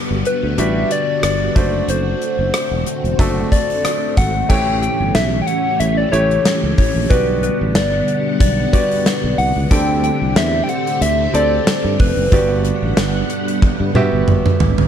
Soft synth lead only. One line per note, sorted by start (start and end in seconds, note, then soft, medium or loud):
0.27 0.57 B4 medium
0.60 0.94 E5 loud
0.92 1.24 D5 loud
1.24 1.85 D5 loud
1.90 3.48 C5 medium
3.52 4.19 D5 loud
4.17 4.51 F#5 loud
4.50 4.82 G5 loud
4.82 5.13 G5 loud
5.15 5.39 E5 loud
5.42 5.48 G5 medium
5.47 5.81 F#5 loud
5.80 5.99 E5 loud
5.97 6.11 D5 medium
6.12 6.74 C#5 loud
6.78 7.12 C#5 medium
7.10 7.42 B4 loud
7.43 7.57 B4 medium
7.76 8.37 D5 loud
8.41 8.71 D5 loud
8.73 9.40 D5 loud
9.38 9.72 F#5 loud
9.71 10.03 G5 loud
10.04 10.34 G5 loud
10.37 10.65 E5 loud
10.64 10.71 G5 medium
10.69 11.01 F#5 medium
11.02 11.37 E5 loud
11.35 12.01 D5 loud
12.00 14.28 B4 medium